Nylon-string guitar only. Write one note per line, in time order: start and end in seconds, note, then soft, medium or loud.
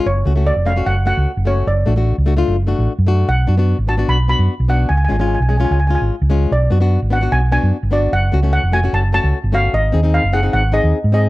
0.25 0.32 A3 medium
0.25 0.32 C#4 soft
0.25 0.32 F#4 medium
0.36 0.54 A3 medium
0.36 0.54 C#4 medium
0.36 0.54 F#4 medium
0.65 0.72 A3 medium
0.65 0.72 C#4 soft
0.65 0.73 F#4 medium
0.76 0.94 A3 medium
0.76 0.94 C#4 medium
0.76 0.95 F#4 medium
1.06 1.30 A3 medium
1.06 1.30 C#4 medium
1.06 1.31 F#4 medium
1.45 1.66 A3 medium
1.45 1.66 C#4 medium
1.45 1.67 F#4 medium
1.86 1.93 A3 medium
1.86 1.93 D4 soft
1.86 1.93 F#4 medium
1.96 2.15 A3 medium
1.96 2.15 D4 medium
1.96 2.15 F#4 medium
2.26 2.33 A3 medium
2.26 2.33 D4 medium
2.26 2.34 F#4 medium
2.37 2.55 A3 medium
2.37 2.56 D4 medium
2.37 2.56 F4 medium
2.67 2.92 A3 medium
2.67 2.92 D4 medium
2.67 2.92 F#4 medium
3.07 3.27 A3 medium
3.07 3.28 D4 medium
3.07 3.28 F#4 medium
3.47 3.54 B3 medium
3.47 3.54 D4 medium
3.47 3.55 F#4 medium
3.57 3.76 B3 medium
3.57 3.77 D4 medium
3.57 3.77 F#4 medium
3.87 3.94 B3 medium
3.87 3.95 D4 medium
3.87 3.95 F#4 medium
3.97 4.16 B3 medium
3.97 4.17 D4 medium
3.97 4.17 F#4 medium
4.28 4.53 B3 medium
4.28 4.53 D4 soft
4.28 4.54 F#4 medium
4.68 4.89 B3 medium
4.68 4.90 D4 medium
4.68 4.90 F#4 medium
5.08 5.15 G#3 medium
5.08 5.16 C#4 medium
5.08 5.16 F4 medium
5.19 5.38 G#3 medium
5.19 5.38 C#4 medium
5.19 5.39 F4 medium
5.49 5.56 G#3 medium
5.49 5.56 C#4 medium
5.49 5.56 G#4 medium
5.59 5.78 G#3 medium
5.59 5.78 C#4 medium
5.59 5.79 F4 medium
5.89 6.14 G#3 medium
5.89 6.14 C#4 medium
5.89 6.15 F4 medium
6.30 6.50 G#3 medium
6.30 6.51 C#4 medium
6.30 6.51 F4 medium
6.70 6.77 B3 medium
6.70 6.77 D4 medium
6.70 6.78 F#4 medium
6.80 6.99 B3 medium
6.80 6.99 D4 medium
6.80 7.00 F#4 medium
7.10 7.17 B3 medium
7.10 7.18 D4 soft
7.10 7.18 F#4 medium
7.21 7.40 B3 medium
7.21 7.40 D4 medium
7.21 7.40 F#4 medium
7.52 7.76 B3 medium
7.52 7.76 D4 medium
7.52 7.77 F#4 medium
7.91 8.12 B3 medium
7.91 8.12 D4 medium
7.91 8.13 F#4 medium
8.32 8.39 A3 medium
8.32 8.39 C#4 medium
8.32 8.39 F#4 medium
8.43 8.61 A3 medium
8.43 8.61 C#4 medium
8.43 8.62 F#4 medium
8.72 8.79 A3 medium
8.72 8.79 C#4 medium
8.72 8.80 F#4 medium
8.83 9.01 A3 medium
8.83 9.02 C#4 medium
8.83 9.02 F#4 medium
9.13 9.37 A3 medium
9.13 9.38 C#4 medium
9.13 9.38 F#4 medium
9.52 9.73 A3 medium
9.52 9.73 C#4 medium
9.52 9.74 F#4 medium
9.92 9.99 C4 medium
9.92 10.00 D#4 medium
9.92 10.00 G#4 medium
10.03 10.22 C4 medium
10.03 10.22 D#4 medium
10.03 10.22 G#4 medium
10.33 10.39 C4 medium
10.33 10.40 D#4 soft
10.33 10.40 G#4 medium
10.43 10.61 C4 medium
10.43 10.62 D#4 medium
10.43 10.62 G#4 medium
10.72 10.97 C4 medium
10.72 10.98 D#4 medium
10.72 10.98 G#4 medium
11.12 11.29 C4 medium
11.12 11.29 D#4 medium
11.12 11.29 G#4 medium